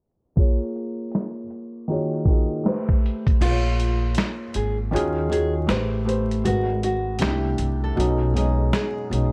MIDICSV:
0, 0, Header, 1, 5, 480
1, 0, Start_track
1, 0, Tempo, 759494
1, 236, Time_signature, 4, 2, 24, 8
1, 5892, End_track
2, 0, Start_track
2, 0, Title_t, "Nylon-string guitar"
2, 0, Program_c, 0, 24
2, 2161, Note_on_c, 0, 65, 99
2, 2613, Note_off_c, 0, 65, 0
2, 2880, Note_on_c, 0, 68, 71
2, 3015, Note_off_c, 0, 68, 0
2, 3360, Note_on_c, 0, 68, 74
2, 3495, Note_off_c, 0, 68, 0
2, 4078, Note_on_c, 0, 66, 92
2, 4293, Note_off_c, 0, 66, 0
2, 4322, Note_on_c, 0, 66, 77
2, 4535, Note_off_c, 0, 66, 0
2, 4559, Note_on_c, 0, 67, 80
2, 4927, Note_off_c, 0, 67, 0
2, 4953, Note_on_c, 0, 69, 64
2, 5284, Note_off_c, 0, 69, 0
2, 5284, Note_on_c, 0, 68, 79
2, 5496, Note_off_c, 0, 68, 0
2, 5522, Note_on_c, 0, 68, 76
2, 5735, Note_off_c, 0, 68, 0
2, 5892, End_track
3, 0, Start_track
3, 0, Title_t, "Felt piano"
3, 0, Program_c, 1, 0
3, 227, Note_on_c, 1, 58, 69
3, 235, Note_on_c, 1, 65, 66
3, 242, Note_on_c, 1, 68, 65
3, 250, Note_on_c, 1, 73, 80
3, 350, Control_c, 1, 64, 127
3, 886, Note_off_c, 1, 58, 0
3, 890, Note_off_c, 1, 65, 0
3, 894, Note_off_c, 1, 68, 0
3, 898, Note_off_c, 1, 73, 0
3, 1187, Note_on_c, 1, 51, 81
3, 1190, Note_on_c, 1, 58, 73
3, 1197, Note_on_c, 1, 65, 71
3, 1199, Note_on_c, 1, 66, 70
3, 1203, Control_c, 1, 64, 0
3, 1204, Note_on_c, 1, 68, 71
3, 1209, Note_on_c, 1, 73, 85
3, 1323, Control_c, 1, 64, 127
3, 1396, Note_off_c, 1, 51, 0
3, 1398, Note_off_c, 1, 58, 0
3, 1402, Note_off_c, 1, 65, 0
3, 1403, Note_off_c, 1, 66, 0
3, 1405, Note_off_c, 1, 68, 0
3, 1408, Note_off_c, 1, 73, 0
3, 1425, Note_on_c, 1, 51, 78
3, 1431, Note_on_c, 1, 58, 73
3, 1437, Note_on_c, 1, 65, 69
3, 1440, Note_on_c, 1, 66, 67
3, 1445, Note_on_c, 1, 68, 68
3, 1449, Note_on_c, 1, 75, 82
3, 1666, Note_on_c, 1, 57, 83
3, 1671, Note_off_c, 1, 51, 0
3, 1673, Note_on_c, 1, 67, 68
3, 1674, Note_off_c, 1, 58, 0
3, 1677, Note_off_c, 1, 65, 0
3, 1678, Note_off_c, 1, 66, 0
3, 1681, Note_off_c, 1, 68, 0
3, 1683, Note_off_c, 1, 75, 0
3, 1683, Note_on_c, 1, 71, 74
3, 1685, Control_c, 1, 64, 0
3, 1690, Note_on_c, 1, 72, 83
3, 1787, Control_c, 1, 64, 127
3, 2081, Note_off_c, 1, 57, 0
3, 2085, Note_off_c, 1, 67, 0
3, 2090, Note_off_c, 1, 71, 0
3, 2093, Note_off_c, 1, 72, 0
3, 2148, Note_on_c, 1, 58, 68
3, 2156, Note_on_c, 1, 65, 63
3, 2163, Control_c, 1, 64, 0
3, 2163, Note_on_c, 1, 68, 56
3, 2170, Note_on_c, 1, 71, 57
3, 2213, Note_on_c, 1, 73, 74
3, 2215, Note_off_c, 1, 71, 0
3, 2263, Control_c, 1, 64, 127
3, 2807, Note_off_c, 1, 58, 0
3, 2811, Note_off_c, 1, 65, 0
3, 2814, Note_off_c, 1, 68, 0
3, 2839, Note_off_c, 1, 73, 0
3, 3103, Note_on_c, 1, 51, 82
3, 3110, Note_on_c, 1, 61, 81
3, 3117, Note_on_c, 1, 65, 80
3, 3123, Note_on_c, 1, 66, 76
3, 3124, Control_c, 1, 64, 0
3, 3129, Note_on_c, 1, 68, 101
3, 3227, Control_c, 1, 64, 127
3, 3315, Note_off_c, 1, 51, 0
3, 3318, Note_off_c, 1, 61, 0
3, 3321, Note_off_c, 1, 65, 0
3, 3325, Note_off_c, 1, 66, 0
3, 3327, Note_off_c, 1, 68, 0
3, 3346, Note_on_c, 1, 51, 65
3, 3351, Note_on_c, 1, 61, 62
3, 3356, Note_on_c, 1, 65, 65
3, 3364, Note_on_c, 1, 66, 65
3, 3369, Note_on_c, 1, 68, 76
3, 3583, Note_on_c, 1, 57, 81
3, 3591, Note_off_c, 1, 51, 0
3, 3592, Note_on_c, 1, 67, 81
3, 3594, Note_off_c, 1, 61, 0
3, 3596, Note_off_c, 1, 65, 0
3, 3599, Note_on_c, 1, 71, 79
3, 3600, Note_off_c, 1, 66, 0
3, 3602, Note_off_c, 1, 68, 0
3, 3603, Control_c, 1, 64, 0
3, 3607, Note_on_c, 1, 72, 94
3, 3706, Control_c, 1, 64, 127
3, 3795, Note_off_c, 1, 57, 0
3, 3799, Note_off_c, 1, 67, 0
3, 3803, Note_off_c, 1, 71, 0
3, 3807, Note_off_c, 1, 72, 0
3, 3825, Note_on_c, 1, 57, 80
3, 3833, Note_on_c, 1, 67, 66
3, 3841, Note_on_c, 1, 71, 70
3, 3848, Note_on_c, 1, 72, 91
3, 4010, Note_off_c, 1, 57, 0
3, 4014, Note_off_c, 1, 67, 0
3, 4018, Note_off_c, 1, 71, 0
3, 4022, Note_off_c, 1, 72, 0
3, 4068, Note_on_c, 1, 56, 71
3, 4075, Note_on_c, 1, 66, 59
3, 4084, Control_c, 1, 64, 0
3, 4084, Note_on_c, 1, 70, 58
3, 4089, Note_on_c, 1, 71, 79
3, 4176, Control_c, 1, 64, 127
3, 4545, Note_on_c, 1, 48, 68
3, 4552, Note_off_c, 1, 56, 0
3, 4553, Note_on_c, 1, 57, 66
3, 4556, Note_off_c, 1, 66, 0
3, 4560, Note_off_c, 1, 70, 0
3, 4561, Note_on_c, 1, 62, 62
3, 4563, Note_off_c, 1, 71, 0
3, 4565, Control_c, 1, 64, 0
3, 4569, Note_on_c, 1, 63, 65
3, 4609, Note_on_c, 1, 64, 78
3, 4615, Note_off_c, 1, 63, 0
3, 4674, Control_c, 1, 64, 127
3, 4961, Note_off_c, 1, 48, 0
3, 4965, Note_off_c, 1, 57, 0
3, 4968, Note_off_c, 1, 62, 0
3, 4992, Note_off_c, 1, 64, 0
3, 5028, Note_on_c, 1, 47, 75
3, 5036, Note_on_c, 1, 54, 71
3, 5043, Note_on_c, 1, 61, 67
3, 5045, Control_c, 1, 64, 0
3, 5052, Note_on_c, 1, 63, 82
3, 5152, Control_c, 1, 64, 127
3, 5237, Note_off_c, 1, 47, 0
3, 5241, Note_off_c, 1, 54, 0
3, 5244, Note_off_c, 1, 61, 0
3, 5249, Note_off_c, 1, 63, 0
3, 5267, Note_on_c, 1, 47, 69
3, 5276, Note_on_c, 1, 56, 65
3, 5282, Note_on_c, 1, 61, 67
3, 5291, Note_on_c, 1, 63, 79
3, 5607, Note_off_c, 1, 47, 0
3, 5612, Note_off_c, 1, 56, 0
3, 5614, Note_off_c, 1, 61, 0
3, 5619, Note_off_c, 1, 63, 0
3, 5748, Note_on_c, 1, 47, 67
3, 5756, Note_on_c, 1, 56, 59
3, 5764, Note_on_c, 1, 61, 58
3, 5772, Note_on_c, 1, 63, 71
3, 5892, Note_off_c, 1, 47, 0
3, 5892, Note_off_c, 1, 56, 0
3, 5892, Note_off_c, 1, 61, 0
3, 5892, Note_off_c, 1, 63, 0
3, 5892, End_track
4, 0, Start_track
4, 0, Title_t, "Upright bass"
4, 0, Program_c, 2, 32
4, 2154, Note_on_c, 2, 34, 97
4, 2610, Note_off_c, 2, 34, 0
4, 2876, Note_on_c, 2, 32, 85
4, 3116, Note_on_c, 2, 39, 97
4, 3126, Note_off_c, 2, 32, 0
4, 3571, Note_off_c, 2, 39, 0
4, 3596, Note_on_c, 2, 33, 96
4, 4051, Note_off_c, 2, 33, 0
4, 4076, Note_on_c, 2, 32, 97
4, 4531, Note_off_c, 2, 32, 0
4, 4557, Note_on_c, 2, 36, 100
4, 4776, Note_off_c, 2, 36, 0
4, 4797, Note_on_c, 2, 36, 93
4, 5016, Note_off_c, 2, 36, 0
4, 5037, Note_on_c, 2, 35, 96
4, 5491, Note_off_c, 2, 35, 0
4, 5759, Note_on_c, 2, 35, 88
4, 5892, Note_off_c, 2, 35, 0
4, 5892, End_track
5, 0, Start_track
5, 0, Title_t, "Drums"
5, 234, Note_on_c, 9, 36, 103
5, 238, Note_on_c, 9, 42, 83
5, 297, Note_off_c, 9, 36, 0
5, 301, Note_off_c, 9, 42, 0
5, 479, Note_on_c, 9, 42, 57
5, 543, Note_off_c, 9, 42, 0
5, 704, Note_on_c, 9, 42, 75
5, 725, Note_on_c, 9, 38, 91
5, 767, Note_off_c, 9, 42, 0
5, 789, Note_off_c, 9, 38, 0
5, 951, Note_on_c, 9, 42, 65
5, 1014, Note_off_c, 9, 42, 0
5, 1215, Note_on_c, 9, 42, 68
5, 1278, Note_off_c, 9, 42, 0
5, 1425, Note_on_c, 9, 36, 78
5, 1450, Note_on_c, 9, 42, 58
5, 1489, Note_off_c, 9, 36, 0
5, 1513, Note_off_c, 9, 42, 0
5, 1681, Note_on_c, 9, 38, 104
5, 1689, Note_on_c, 9, 42, 65
5, 1744, Note_off_c, 9, 38, 0
5, 1752, Note_off_c, 9, 42, 0
5, 1824, Note_on_c, 9, 36, 86
5, 1888, Note_off_c, 9, 36, 0
5, 1932, Note_on_c, 9, 42, 57
5, 1995, Note_off_c, 9, 42, 0
5, 2064, Note_on_c, 9, 36, 80
5, 2070, Note_on_c, 9, 42, 30
5, 2128, Note_off_c, 9, 36, 0
5, 2134, Note_off_c, 9, 42, 0
5, 2159, Note_on_c, 9, 49, 84
5, 2162, Note_on_c, 9, 42, 86
5, 2222, Note_off_c, 9, 49, 0
5, 2225, Note_off_c, 9, 42, 0
5, 2400, Note_on_c, 9, 42, 56
5, 2463, Note_off_c, 9, 42, 0
5, 2621, Note_on_c, 9, 42, 79
5, 2643, Note_on_c, 9, 38, 101
5, 2684, Note_off_c, 9, 42, 0
5, 2706, Note_off_c, 9, 38, 0
5, 2871, Note_on_c, 9, 42, 68
5, 2934, Note_off_c, 9, 42, 0
5, 3135, Note_on_c, 9, 42, 71
5, 3199, Note_off_c, 9, 42, 0
5, 3366, Note_on_c, 9, 42, 63
5, 3429, Note_off_c, 9, 42, 0
5, 3595, Note_on_c, 9, 38, 106
5, 3603, Note_on_c, 9, 42, 67
5, 3658, Note_off_c, 9, 38, 0
5, 3667, Note_off_c, 9, 42, 0
5, 3848, Note_on_c, 9, 42, 56
5, 3911, Note_off_c, 9, 42, 0
5, 3990, Note_on_c, 9, 42, 32
5, 4053, Note_off_c, 9, 42, 0
5, 4079, Note_on_c, 9, 42, 82
5, 4143, Note_off_c, 9, 42, 0
5, 4318, Note_on_c, 9, 42, 52
5, 4381, Note_off_c, 9, 42, 0
5, 4542, Note_on_c, 9, 42, 84
5, 4563, Note_on_c, 9, 38, 102
5, 4605, Note_off_c, 9, 42, 0
5, 4627, Note_off_c, 9, 38, 0
5, 4792, Note_on_c, 9, 42, 68
5, 4855, Note_off_c, 9, 42, 0
5, 5055, Note_on_c, 9, 42, 72
5, 5118, Note_off_c, 9, 42, 0
5, 5287, Note_on_c, 9, 42, 59
5, 5350, Note_off_c, 9, 42, 0
5, 5518, Note_on_c, 9, 38, 111
5, 5526, Note_on_c, 9, 42, 70
5, 5581, Note_off_c, 9, 38, 0
5, 5590, Note_off_c, 9, 42, 0
5, 5768, Note_on_c, 9, 42, 63
5, 5832, Note_off_c, 9, 42, 0
5, 5892, End_track
0, 0, End_of_file